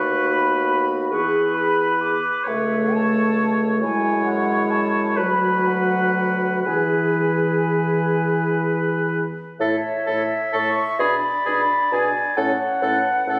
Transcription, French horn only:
0.00 2.16 B3 medium
2.47 3.84 A3 medium
3.83 5.21 G#3 medium
5.20 6.65 F#3 medium
6.65 9.24 E3 medium
9.61 9.77 E4 medium
10.08 10.24 E4 medium
10.54 10.70 E4 medium
11.01 11.17 D4 medium
11.48 11.64 D4 medium
11.93 12.09 D4 soft
12.38 12.54 C#4 medium
12.83 12.99 C#4 medium
13.27 13.39 C#4 medium

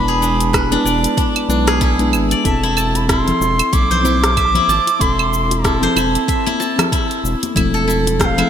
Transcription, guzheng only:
0.00 0.22 D4 medium
0.00 0.53 B4 medium
0.00 0.80 D5 medium
0.08 1.67 G#4 loud
0.22 0.71 D4 medium
0.53 2.58 B4 medium
0.72 1.17 D4 loud
0.85 2.31 D5 medium
1.17 1.49 D4 medium
1.50 4.29 D4 medium
1.67 2.83 G#4 loud
1.81 2.63 E4 loud
2.32 4.16 D5 medium
2.46 4.18 E5 medium
2.63 3.09 E4 loud
2.77 4.22 A5 medium
3.09 3.72 E4 medium
3.73 4.04 E4 medium
3.91 5.82 C5 loud
4.05 4.55 E4 medium
4.37 6.09 E5 medium
4.55 5.00 E4 loud
4.69 6.14 A5 medium
5.01 5.64 E4 medium
5.64 5.96 E4 medium
5.83 7.81 C5 loud
5.96 6.46 E4 medium
6.28 8.00 E5 medium
6.46 6.92 E4 loud
6.60 8.05 A5 medium
6.92 7.55 E4 medium
7.56 7.87 E4 medium
7.74 8.50 A4 medium
7.88 8.38 E4 medium
8.19 8.50 C5 medium
8.38 8.50 E4 loud

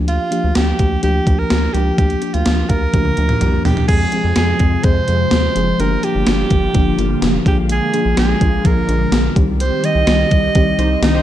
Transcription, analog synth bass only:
0.00 0.19 D2 loud
0.44 0.52 D2 medium
0.56 0.73 D2 medium
0.79 0.97 D2 loud
1.04 1.21 D2 loud
1.27 1.44 D2 loud
1.51 1.68 D2 loud
1.74 1.91 C#2 medium
1.98 2.16 D2 loud
2.34 2.43 D2 medium
2.46 2.63 D2 medium
2.70 2.87 D2 medium
2.94 3.11 D2 loud
3.18 3.35 D2 loud
3.41 3.58 C2 loud
3.65 3.82 E2 medium
3.89 4.06 F2 medium
4.24 4.33 F2 medium
4.37 4.54 F2 loud
4.60 4.77 F2 medium
4.84 5.01 F2 loud
5.09 5.25 F2 medium
5.32 5.49 D#2 medium
5.56 5.73 F#1 medium
5.79 5.97 G1 loud
6.15 6.24 G1 medium
6.27 6.44 G1 loud
6.51 6.68 G1 medium
6.75 6.92 G1 loud
6.98 7.15 G1 medium
7.22 7.39 F1 medium
7.46 7.80 A#1 loud
8.05 8.14 A#1 medium
8.17 8.35 A#1 loud
8.41 8.58 A#1 medium
8.65 8.82 A#1 loud
8.88 9.06 A#1 loud
9.12 9.29 A#1 medium
9.36 9.71 C2 loud
9.95 10.04 C2 medium
10.07 10.24 C2 loud
10.32 10.49 C2 loud
10.55 10.73 C2 loud
10.78 10.96 C2 medium
11.02 11.20 C2 medium

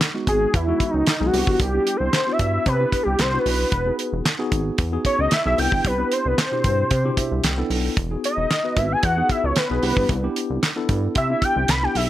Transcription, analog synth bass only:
0.27 0.46 G#1 medium
0.54 0.73 E2 loud
0.94 1.03 C#2 medium
1.21 1.30 B1 medium
1.33 1.44 C2 loud
1.47 1.56 G1 loud
1.60 1.79 C2 loud
2.00 2.09 C2 loud
2.40 2.59 G2 medium
2.66 2.85 C3 loud
3.07 3.16 C2 medium
3.19 3.39 C2 medium
3.46 3.65 B1 loud
3.72 3.91 E1 loud
4.13 4.22 E1 loud
4.52 4.71 G#1 medium
4.79 4.98 E2 loud
5.19 5.28 C#2 loud
5.46 5.55 B1 medium
5.58 5.69 C2 loud
5.72 5.81 G1 loud
5.85 6.04 C2 loud
6.26 6.34 C2 loud
6.64 6.84 G2 medium
6.91 7.10 C3 loud
7.32 7.41 C2 medium
7.44 7.63 C2 medium
7.70 7.90 B1 loud
7.97 8.16 E1 loud
8.37 8.47 E1 loud
8.77 8.96 G#1 medium
9.03 9.23 E2 loud
9.44 9.53 C#2 loud
9.70 9.79 B1 medium
9.83 9.93 C2 loud
9.97 10.06 G1 loud
10.09 10.28 C2 loud
10.50 10.59 C2 medium
10.89 11.08 G2 medium
11.16 11.35 C3 loud
11.56 11.65 C2 loud
11.69 11.88 C2 medium
11.95 12.10 B1 loud

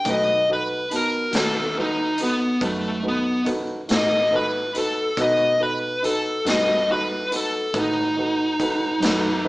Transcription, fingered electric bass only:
0.05 1.29 B1 medium
1.33 2.57 D#2 medium
2.61 3.86 F#2 medium
3.90 5.14 A2 medium
5.17 6.42 B2 medium
6.45 7.71 G2 medium
7.74 8.99 A2 medium
9.00 9.48 F#2 medium

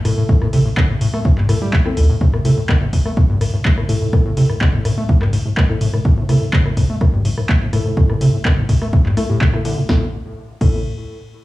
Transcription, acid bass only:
0.05 0.12 A2 loud
0.18 0.24 A2 medium
0.29 0.33 A2 loud
0.42 0.48 A2 loud
0.53 0.60 C3 loud
0.66 0.69 A2 medium
0.77 0.87 D3 loud
0.90 0.96 A2 medium
1.01 1.08 A2 loud
1.14 1.20 A3 loud
1.25 1.29 A2 loud
1.38 1.47 G2 medium
1.49 1.56 A2 loud
1.62 1.75 G3 loud
1.73 1.77 C4 medium
1.86 1.95 C4 medium
1.97 2.07 A1 medium
2.10 2.16 A2 loud
2.21 2.25 A2 loud
2.34 2.40 A2 loud
2.45 2.52 C3 loud
2.58 2.61 A2 medium
2.69 2.79 D3 loud
2.82 2.88 A2 medium
2.93 3.00 A2 loud
3.06 3.12 A3 loud
3.17 3.21 A2 loud
3.30 3.39 G2 loud
3.41 3.45 A2 medium
3.54 3.57 A2 medium
3.65 3.72 A3 medium
3.78 3.84 A2 medium
3.89 3.96 A2 loud
4.02 4.08 A2 medium
4.13 4.17 A2 loud
4.26 4.32 A2 loud
4.37 4.44 C3 loud
4.50 4.53 A2 medium
4.61 4.71 D3 loud
4.74 4.80 A2 medium
4.85 4.92 A2 loud
4.98 5.04 A3 loud
5.09 5.13 A2 loud
5.22 5.31 G2 loud
5.33 5.37 A2 medium
5.46 5.49 A2 medium
5.57 5.64 A3 medium
5.70 5.76 A2 medium
5.81 5.88 A2 loud
5.94 6.00 A2 medium
6.05 6.09 A2 loud
6.18 6.24 A2 loud
6.29 6.36 C3 loud
6.42 6.45 A2 medium
6.53 6.63 D3 medium
6.66 6.72 A2 medium
6.77 6.84 A2 loud
6.90 6.96 A3 loud
7.01 7.05 A2 loud
7.14 7.23 G2 loud
7.25 7.29 A2 medium
7.38 7.41 A2 medium
7.49 7.56 A3 medium
7.62 7.68 A2 medium
7.73 7.80 A2 loud
7.86 7.92 A2 medium
7.97 8.01 A2 loud
8.10 8.16 A2 loud
8.21 8.28 C3 loud
8.34 8.37 A2 medium
8.45 8.55 D3 loud
8.58 8.64 A2 medium
8.69 8.76 A2 loud
8.82 8.88 A3 loud
8.93 8.97 A2 loud
9.06 9.15 G2 medium
9.17 9.24 A3 loud
9.30 9.39 A2 loud
9.41 9.51 A2 loud
9.54 9.60 A2 medium
9.65 9.79 D3 medium
9.78 9.81 G2 medium
9.89 10.03 A2 loud
10.61 10.83 A2 loud

